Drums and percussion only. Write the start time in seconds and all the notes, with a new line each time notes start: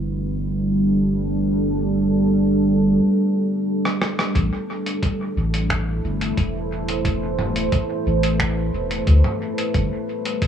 3.85 cross-stick
4.02 cross-stick
4.19 cross-stick
4.35 kick, closed hi-hat
4.86 closed hi-hat
5.03 kick, closed hi-hat
5.54 closed hi-hat
5.70 finger snap, kick, closed hi-hat, mid tom
6.21 closed hi-hat
6.37 kick, closed hi-hat
6.88 closed hi-hat
7.05 kick, closed hi-hat
7.39 mid tom
7.56 closed hi-hat
7.72 kick, closed hi-hat
8.23 closed hi-hat
8.40 finger snap, kick, closed hi-hat
8.91 closed hi-hat
9.07 kick, closed hi-hat
9.24 mid tom
9.58 closed hi-hat
9.74 kick, closed hi-hat
10.25 closed hi-hat
10.42 kick, closed hi-hat